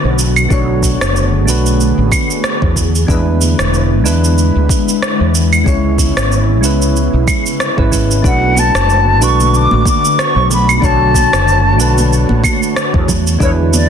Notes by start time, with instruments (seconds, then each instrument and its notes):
Already playing: ambient pad D3 A3 B3 F#4, synth keys A3 D4 F#4 B4
0.04 fretless electric bass B1
0.19 shaker
0.36 claves, shaker
0.49 fretless electric bass B1, synth keys A3 D4 F#4 C#5, ambient pad G#4, kick, shaker
0.83 kick, shaker
1.01 fretless electric bass F#1, cross-stick, shaker
1.16 shaker
1.45 fretless electric bass B1, synth keys A3 D4 F#4 B4, shaker
1.66 shaker
1.80 shaker
1.98 fretless electric bass A1
2.12 kick, claves, shaker
2.30 shaker
2.44 cross-stick, shaker
2.62 fretless electric bass E2, kick
2.76 ambient pad G#3 E4, kick, shaker
2.95 shaker
3.07 fretless electric bass E2, synth keys G#3 D4 E4 B4, kick, shaker
3.41 shaker
3.59 fretless electric bass E1, cross-stick, shaker
3.74 shaker
4.04 fretless electric bass E2, synth keys G#3 D4 E4 B4, shaker
4.24 shaker
4.38 shaker
4.56 fretless electric bass D2
4.69 kick, shaker
4.89 shaker
5.02 cross-stick, shaker
5.20 fretless electric bass E2
5.35 shaker
5.53 claves, shaker
5.64 fretless electric bass C#2, ambient pad C#3, synth keys G#3 C#4 E4 C#5, kick, shaker
5.98 kick, shaker
6.16 fretless electric bass G#1, cross-stick, shaker
6.32 shaker
6.61 fretless electric bass C#2, synth keys G#3 C#4 E4, shaker
6.65 synth keys B4
6.82 shaker
6.96 shaker
7.13 fretless electric bass B1
7.28 kick, claves, shaker
7.46 shaker
7.60 cross-stick, shaker
7.77 fretless electric bass G#1, synth keys G#3 C#4 E4 B4, kick
7.91 synth keys G#3 C#4 E4 B4, kick, shaker
8.11 shaker
8.22 fretless electric bass B1, ambient pad D3 A3 B3 F#4, synth keys A3 D4 F#4 B4, kick, shaker
8.27 flute F#5
8.56 flute A5, high conga, shaker
8.74 fretless electric bass F#1, cross-stick, shaker
8.90 shaker
9.20 fretless electric bass B1, synth keys A3 D4 F#4 B4, flute C#6, shaker
9.40 high conga, shaker
9.54 flute D6, shaker
9.71 fretless electric bass A1, high conga
9.85 flute D6, kick, high conga, shaker
10.05 shaker
10.19 flute C#6, cross-stick, shaker
10.36 fretless electric bass B1
10.51 flute B5, low conga, shaker
10.69 claves, shaker
10.78 synth keys A3 D4, flute B5
10.82 fretless electric bass B1, synth keys F#4 C#5, ambient pad C#5, flute A5, kick, shaker
11.14 kick, high conga, shaker
11.33 fretless electric bass F#1, cross-stick, shaker
11.48 shaker
11.77 fretless electric bass B1, synth keys A3 D4 F#4 B4, shaker
11.98 high conga, shaker
12.13 shaker
12.29 fretless electric bass A1, high conga
12.44 kick, high conga, claves, shaker
12.63 shaker
12.76 cross-stick, shaker
12.94 fretless electric bass E2, kick
13.08 ambient pad G#3 B3 E4, kick, low conga, shaker
13.27 shaker
13.39 fretless electric bass E2, synth keys G#3 D4 E4 B4, kick, shaker
13.43 flute C#5
13.74 flute D5, high conga, shaker